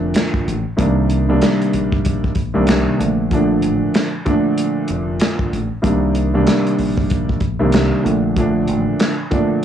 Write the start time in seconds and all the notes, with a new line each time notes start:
Already playing: F1 A#2 D3 F3 A3 D4
0.14 snare, clap, closed hi-hat
0.34 kick
0.48 A1, closed hi-hat
0.77 C2 C3 D#3 G3 A#3 D4, kick, closed hi-hat
1.10 closed hi-hat
1.29 C3 D#3 G3 A#3 D4
1.42 snare, clap, closed hi-hat
1.61 closed hi-hat
1.73 A#1, closed hi-hat
1.92 kick
2.05 kick, closed hi-hat
2.24 kick
2.35 kick, closed hi-hat
2.54 C2 C3 D#3 G3 A#3 D4
2.67 snare, clap, closed hi-hat
2.98 A#1 A#2 D3 F3 A3 D4, closed hi-hat
3.31 A#2 D3 F3 A3 D4, kick, closed hi-hat
3.62 A1, closed hi-hat
3.94 snare, clap, closed hi-hat
4.25 A#2 D3 F3 A3 D4, kick, closed hi-hat
4.58 closed hi-hat
4.88 F1, closed hi-hat
5.20 snare, clap, closed hi-hat
5.39 kick
5.53 A1, closed hi-hat
5.82 C2 C3 D#3 G3 A#3 D4, kick, closed hi-hat
6.15 closed hi-hat
6.34 C3 D#3 G3 A#3 D4
6.47 snare, clap, closed hi-hat
6.67 closed hi-hat
6.79 A#1, open hi-hat
6.98 kick
7.10 kick, closed hi-hat
7.29 kick
7.40 kick, closed hi-hat
7.59 C2 C3 D#3 G3 A#3 D4
7.72 snare, clap, closed hi-hat
8.03 A#1 A#2 D3 F3 A3 D4, closed hi-hat
8.36 A#2 D3 F3 A3 D4, kick, closed hi-hat
8.68 A1, closed hi-hat
8.99 snare, clap, closed hi-hat
9.30 A#2 D3 F3 A3 D4, kick, closed hi-hat